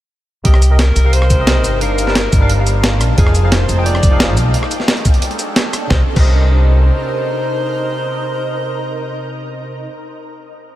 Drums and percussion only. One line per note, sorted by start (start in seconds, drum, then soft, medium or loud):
0.45 kick loud
0.45 closed hi-hat loud
0.54 cross-stick medium
0.62 closed hi-hat medium
0.62 shaker medium
0.79 snare loud
0.79 closed hi-hat loud
0.96 closed hi-hat medium
0.96 shaker medium
1.13 closed hi-hat loud
1.22 cross-stick medium
1.30 kick loud
1.30 closed hi-hat medium
1.30 shaker medium
1.47 snare loud
1.47 closed hi-hat loud
1.64 closed hi-hat medium
1.64 shaker medium
1.81 closed hi-hat medium
1.98 closed hi-hat medium
1.98 shaker medium
2.07 snare soft
2.15 snare loud
2.15 closed hi-hat medium
2.33 kick loud
2.33 closed hi-hat medium
2.33 shaker medium
2.49 closed hi-hat loud
2.67 closed hi-hat medium
2.67 shaker medium
2.84 snare loud
2.84 closed hi-hat loud
3.01 cross-stick medium
3.01 closed hi-hat medium
3.01 shaker medium
3.18 kick loud
3.18 closed hi-hat medium
3.27 cross-stick medium
3.35 closed hi-hat medium
3.35 shaker medium
3.52 snare loud
3.52 closed hi-hat medium
3.69 closed hi-hat medium
3.69 shaker medium
3.86 closed hi-hat medium
3.95 cross-stick medium
4.03 kick loud
4.03 closed hi-hat medium
4.03 shaker medium
4.20 snare loud
4.20 closed hi-hat medium
4.37 closed hi-hat medium
4.37 shaker medium
4.54 closed hi-hat medium
4.63 cross-stick medium
4.71 closed hi-hat medium
4.71 shaker medium
4.80 snare soft
4.88 snare loud
4.88 closed hi-hat medium
4.97 closed hi-hat soft
5.05 kick loud
5.05 closed hi-hat medium
5.05 shaker medium
5.14 closed hi-hat soft
5.22 closed hi-hat medium
5.31 closed hi-hat soft
5.39 closed hi-hat medium
5.39 shaker medium
5.56 snare loud
5.56 closed hi-hat medium
5.73 cross-stick medium
5.73 closed hi-hat medium
5.73 shaker medium
5.90 kick loud
5.90 snare medium
6.16 kick loud
6.16 crash medium